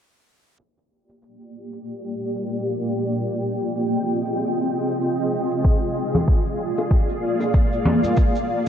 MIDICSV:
0, 0, Header, 1, 3, 480
1, 0, Start_track
1, 0, Tempo, 631579
1, 450, Time_signature, 4, 2, 24, 8
1, 6598, End_track
2, 0, Start_track
2, 0, Title_t, "Ambient pad"
2, 0, Program_c, 0, 92
2, 448, Note_on_c, 0, 79, 88
2, 449, Note_on_c, 0, 65, 66
2, 450, Note_on_c, 0, 58, 75
2, 451, Note_on_c, 0, 74, 73
2, 452, Note_on_c, 0, 67, 71
2, 2351, Note_off_c, 0, 58, 0
2, 2351, Note_off_c, 0, 74, 0
2, 2352, Note_off_c, 0, 67, 0
2, 2371, Note_on_c, 0, 68, 68
2, 2372, Note_on_c, 0, 60, 76
2, 2372, Note_on_c, 0, 75, 69
2, 4259, Note_off_c, 0, 79, 0
2, 4272, Note_off_c, 0, 60, 0
2, 4272, Note_off_c, 0, 75, 0
2, 4285, Note_on_c, 0, 74, 74
2, 4286, Note_on_c, 0, 77, 86
2, 4287, Note_on_c, 0, 58, 78
2, 6179, Note_off_c, 0, 65, 0
2, 6180, Note_off_c, 0, 68, 0
2, 6188, Note_off_c, 0, 74, 0
2, 6189, Note_off_c, 0, 77, 0
2, 6209, Note_on_c, 0, 67, 77
2, 6210, Note_on_c, 0, 77, 89
2, 6211, Note_on_c, 0, 63, 73
2, 6211, Note_on_c, 0, 72, 73
2, 6598, Note_off_c, 0, 58, 0
2, 6598, Note_off_c, 0, 63, 0
2, 6598, Note_off_c, 0, 67, 0
2, 6598, Note_off_c, 0, 72, 0
2, 6598, Note_off_c, 0, 77, 0
2, 6598, End_track
3, 0, Start_track
3, 0, Title_t, "Drums"
3, 449, Note_on_c, 9, 82, 51
3, 525, Note_off_c, 9, 82, 0
3, 590, Note_on_c, 9, 82, 29
3, 666, Note_off_c, 9, 82, 0
3, 829, Note_on_c, 9, 82, 53
3, 905, Note_off_c, 9, 82, 0
3, 929, Note_on_c, 9, 82, 47
3, 1005, Note_off_c, 9, 82, 0
3, 1067, Note_on_c, 9, 82, 29
3, 1143, Note_off_c, 9, 82, 0
3, 1310, Note_on_c, 9, 82, 59
3, 1386, Note_off_c, 9, 82, 0
3, 1409, Note_on_c, 9, 82, 44
3, 1485, Note_off_c, 9, 82, 0
3, 1548, Note_on_c, 9, 82, 30
3, 1624, Note_off_c, 9, 82, 0
3, 1789, Note_on_c, 9, 82, 59
3, 1865, Note_off_c, 9, 82, 0
3, 1886, Note_on_c, 9, 82, 50
3, 1962, Note_off_c, 9, 82, 0
3, 2028, Note_on_c, 9, 82, 27
3, 2104, Note_off_c, 9, 82, 0
3, 2268, Note_on_c, 9, 82, 61
3, 2344, Note_off_c, 9, 82, 0
3, 2367, Note_on_c, 9, 82, 50
3, 2443, Note_off_c, 9, 82, 0
3, 2509, Note_on_c, 9, 82, 28
3, 2585, Note_off_c, 9, 82, 0
3, 2749, Note_on_c, 9, 82, 56
3, 2825, Note_off_c, 9, 82, 0
3, 2848, Note_on_c, 9, 82, 50
3, 2924, Note_off_c, 9, 82, 0
3, 2988, Note_on_c, 9, 82, 32
3, 3064, Note_off_c, 9, 82, 0
3, 3229, Note_on_c, 9, 82, 63
3, 3305, Note_off_c, 9, 82, 0
3, 3330, Note_on_c, 9, 82, 52
3, 3406, Note_off_c, 9, 82, 0
3, 3471, Note_on_c, 9, 82, 31
3, 3547, Note_off_c, 9, 82, 0
3, 3710, Note_on_c, 9, 82, 61
3, 3786, Note_off_c, 9, 82, 0
3, 3810, Note_on_c, 9, 82, 55
3, 3886, Note_off_c, 9, 82, 0
3, 3949, Note_on_c, 9, 82, 30
3, 4025, Note_off_c, 9, 82, 0
3, 4187, Note_on_c, 9, 82, 63
3, 4263, Note_off_c, 9, 82, 0
3, 4288, Note_on_c, 9, 82, 54
3, 4291, Note_on_c, 9, 36, 103
3, 4364, Note_off_c, 9, 82, 0
3, 4367, Note_off_c, 9, 36, 0
3, 4429, Note_on_c, 9, 82, 30
3, 4505, Note_off_c, 9, 82, 0
3, 4670, Note_on_c, 9, 82, 58
3, 4672, Note_on_c, 9, 64, 79
3, 4675, Note_on_c, 9, 60, 45
3, 4746, Note_off_c, 9, 82, 0
3, 4748, Note_off_c, 9, 64, 0
3, 4751, Note_off_c, 9, 60, 0
3, 4769, Note_on_c, 9, 82, 50
3, 4771, Note_on_c, 9, 36, 100
3, 4845, Note_off_c, 9, 82, 0
3, 4847, Note_off_c, 9, 36, 0
3, 4909, Note_on_c, 9, 82, 32
3, 4985, Note_off_c, 9, 82, 0
3, 5149, Note_on_c, 9, 82, 68
3, 5155, Note_on_c, 9, 60, 46
3, 5225, Note_off_c, 9, 82, 0
3, 5231, Note_off_c, 9, 60, 0
3, 5250, Note_on_c, 9, 82, 54
3, 5251, Note_on_c, 9, 36, 98
3, 5326, Note_off_c, 9, 82, 0
3, 5327, Note_off_c, 9, 36, 0
3, 5389, Note_on_c, 9, 82, 33
3, 5465, Note_off_c, 9, 82, 0
3, 5626, Note_on_c, 9, 60, 44
3, 5629, Note_on_c, 9, 82, 64
3, 5702, Note_off_c, 9, 60, 0
3, 5705, Note_off_c, 9, 82, 0
3, 5729, Note_on_c, 9, 82, 52
3, 5731, Note_on_c, 9, 36, 101
3, 5805, Note_off_c, 9, 82, 0
3, 5807, Note_off_c, 9, 36, 0
3, 5870, Note_on_c, 9, 82, 31
3, 5946, Note_off_c, 9, 82, 0
3, 5970, Note_on_c, 9, 64, 89
3, 6046, Note_off_c, 9, 64, 0
3, 6110, Note_on_c, 9, 63, 63
3, 6110, Note_on_c, 9, 82, 65
3, 6186, Note_off_c, 9, 63, 0
3, 6186, Note_off_c, 9, 82, 0
3, 6208, Note_on_c, 9, 82, 53
3, 6212, Note_on_c, 9, 36, 92
3, 6284, Note_off_c, 9, 82, 0
3, 6288, Note_off_c, 9, 36, 0
3, 6349, Note_on_c, 9, 82, 30
3, 6425, Note_off_c, 9, 82, 0
3, 6598, End_track
0, 0, End_of_file